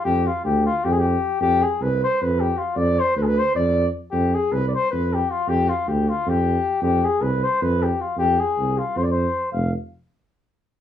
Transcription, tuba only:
X:1
M:7/8
L:1/8
Q:1/4=155
K:none
V:1 name="Tuba" clef=bass
F,,2 D,,2 F,,3 | F,,2 C,,2 F,,3 | F,,2 D,,2 F,,3 | F,,2 C,,2 F,,3 |
F,,2 D,,2 F,,3 | F,,2 C,,2 F,,3 | F,,2 C,,2 F,,3 | F,,, z6 |]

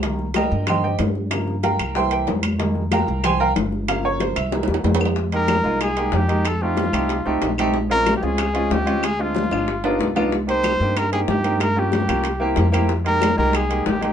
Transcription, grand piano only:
X:1
M:4/4
L:1/8
Q:1/4=186
K:Fm
V:1 name="Grand piano"
z2 [Begb]2 [cegc'] [Gceg] z2 | z2 [Bfgb]2 [c=egc'] [Gceg] z2 | z2 [Bfgb]2 [cgac'] [Bfgb] z2 | f d c =e2 z3 |
z [A,B,EG] z [A,B,EF] z [A,B,EG] z [A,B,EG] | z [=A,CEG] z [A,CEG] z [A,CEG] z [A,CEG] | z [A,CDF] z [A,CDF] z [A,CDF] z [A,CDF] | z [A,C=DF] z [A,CDF] z [=B,DEF] z [B,DEF] |
z [B,CEG] z [B,CEG] z [B,CEG] z [B,CEG] | z [B,DFG] z [B,DFG] z [B,C=EG] z [B,CEG] | z [A,B,EG] z [A,B,EG] z [A,B,EG] z [A,B,EG] |]
V:2 name="Grand piano" clef=bass
[E,G,B,] z3 [E,G,B,] z3 | [D,F,B,] z3 [=E,G,B,]3 z | [E,G,A,B,] z6 z | [D,F,B,]3 z [=E,A,B,]4 |
z8 | z8 | z8 | z8 |
z8 | z8 | z8 |]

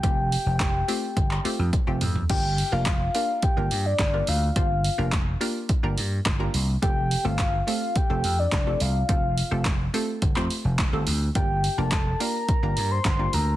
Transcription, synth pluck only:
X:1
M:4/4
L:1/16
Q:1/4=106
K:Gm
V:1 name="Synth pluck"
[A,CFG]4- [A,CFG] z [A,CFG]3 z [A,CFG]2 z [A,CFG]2 z | [B,DFGB]2 z [B,DFGB]2 z [B,DFGB]2 z [B,DFGB]3 z [B,DFGB]2 z | [B,DFGc]2 z [B,DFGB]2 z [B,DFGB]2 z [B,DFGB]3 z [B,DFGB]2 z | [A,CFGA]2 z [A,CFGA]2 z [A,CFGA]2 z [A,CFGA]3 z [A,CFGA]2 z |
[A,CFGA]2 z [A,CFGA]2 z [A,CFGA]2 z [A,CFGc]3 z [A,CFGA]2 z | [B,DFGB]2 z [B,DFGB]2 z [B,DFGB]2 z [B,DFGB]3 z [B,DFGB]2 z |]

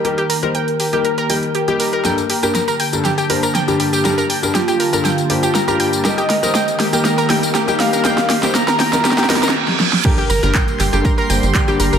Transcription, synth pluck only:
X:1
M:4/4
L:1/16
Q:1/4=120
K:Gm
V:1 name="Synth pluck"
G G B B g z G G B B g z G G B B | g z G G B B g z G G B B g z G G | B B g z G G B B g z G G B B g z | G G B B g z G G B B g z G G B B |
g z G G B B g z G G B B z4 | [Gg] [Gg] [Bb] [Bb] [gg'] z [Gg] [Gg] [Bb] [Bb] [gg'] z [Gg] [Gg] [Bb] [Bb] |]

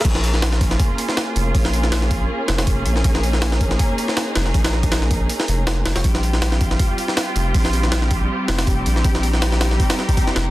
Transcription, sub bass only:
X:1
M:4/4
L:1/16
Q:"Swing 16ths" 1/4=160
K:Bbdor
V:1 name="Sub bass" clef=bass
B,,,8 z6 F,,,2 | B,,,8 z2 F,,,2 F,,,2 B,,,2 | B,,,8 z6 F,,,2 | B,,,8 z2 F,,,4 F,,, F,,, |
B,,,8 z6 F,,,2 | B,,,8 z2 F,,,2 F,,,2 B,,,2 | B,,,8 z6 F,,,2 |]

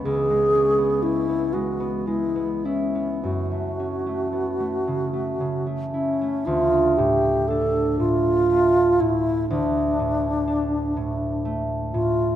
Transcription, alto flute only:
X:1
M:6/8
L:1/8
Q:3/8=40
K:F#m
V:1 name="Alto flute"
G2 E F E C | F4- F C | [K:Dm] F G A F2 E | D4 z F |]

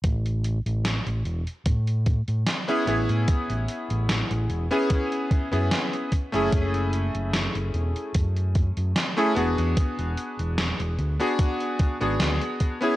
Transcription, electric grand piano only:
X:1
M:4/4
L:1/16
Q:"Swing 16ths" 1/4=74
K:A
V:1 name="Electric grand piano"
z12 z [B,CEG] [B,CEG]2- | [B,CEG]6- [B,CEG] [B,CEG]4 [B,CEG]3 z [A,CEG]- | [A,CEG]12- [A,CEG] [A,CEG] [B,DFG]2- | [B,DFG]6- [B,DFG] [B,DFG]4 [B,DFG]4 [B,CEG] |]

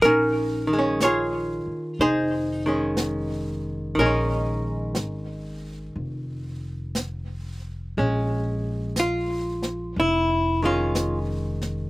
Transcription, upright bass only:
X:1
M:4/4
L:1/8
Q:"Swing" 1/4=60
K:Bbm
V:1 name="Upright bass" clef=bass
B,,,3 z F,,,4 | B,,,2 A,,,2 F,,,4 | B,,,4 F,,,4 |]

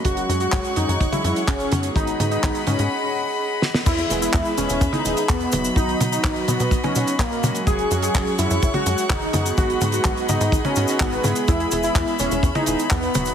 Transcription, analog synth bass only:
X:1
M:4/4
L:1/16
Q:1/4=126
K:Elyd
V:1 name="Analog synth bass" clef=bass
F,,,2 F,,2 F,,, z F,, F,, F,,, z F,, z F,,,2 F,,2 | G,,,2 G,,2 G,,, z G,, G,, z8 | E,,2 E,,,2 E,, z E,,, E,,, E,, z E,,, z E,,2 E,,,2 | B,,,2 B,,2 B,,, z B,, B,, B,,, z B,, z B,,, z B,, z |
F,,,2 F,,2 F,,, z F,, F,, F,,, z F,, z F,,,2 F,,2 | G,,,2 G,,2 G,,, z G,, G,, G,,, z G,, z G,,,2 G,, z | E,,2 E,,,2 E,, z E,,, E,,, E,, z E,,, z E,,2 E,,,2 |]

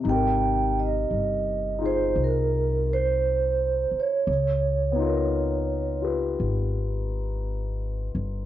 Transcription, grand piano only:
X:1
M:4/4
L:1/8
Q:"Swing" 1/4=57
K:Ab
V:1 name="Grand piano"
[C,EGB]3 [EFA]4- [EFA] | z [_CEFB]2 [FG_c]4- [FGc] |]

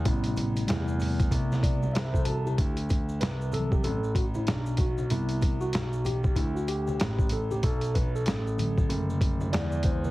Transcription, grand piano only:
X:1
M:4/4
L:1/8
Q:"Swing 16ths" 1/4=95
K:Ador
V:1 name="Grand piano" clef=bass
A,,,2 E,,2 C,,2 C,,2 | D,,2 C,,2 A,,,2 B,,,2 | C,,2 B,,,2 D,,2 A,,,2 | B,,,2 A,,,2 F,,,2 E,,2 |]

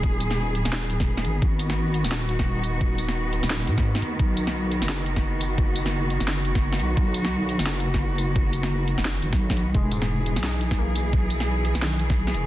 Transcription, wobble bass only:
X:1
M:4/4
L:1/16
Q:"Swing 16ths" 1/4=173
K:B
V:1 name="Wobble bass" clef=bass
D,,,6- D,,, D,,,6- D,,, G,,,2 | G,,,6- G,,, D,,,8- D,,,- | D,,,6- D,,, D,,,3 G,,4 D,,2 | B,,,6- B,,, F,,,8- F,,,- |
F,,,6- F,,, F,,,6- F,,, B,,,2 | B,,,6- B,,, F,,,8- F,,,- | F,,,6- F,,, F,,,3 F,,, B,,,4- B,,, | E,,,6- E,,, B,,,8- B,,,- |
B,,,6- B,,, B,,,6- B,,, E,,,2 |]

